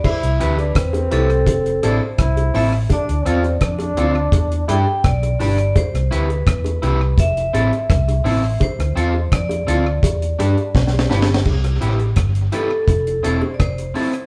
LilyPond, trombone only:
\new Staff \with { instrumentName = "Trombone" } { \time 4/4 \key c \major \tempo 4 = 84 e'8. d'16 c'4. d'16 r16 e'8. r16 | d'8 c'8 d'4. e'16 r4 r16 | r1 | r1 |
r1 | }